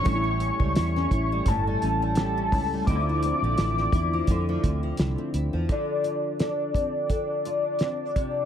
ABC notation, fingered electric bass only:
X:1
M:4/4
L:1/16
Q:"Swing 16ths" 1/4=85
K:Dm
V:1 name="Fingered electric bass" clef=bass
A,,,3 ^C,, E,,2 A,,,2 G,,,2 A,,,4 C,,2 | D,,3 B,,, A,,,2 E,,2 F,,2 D,,2 C,, z D,, E,, | z16 |]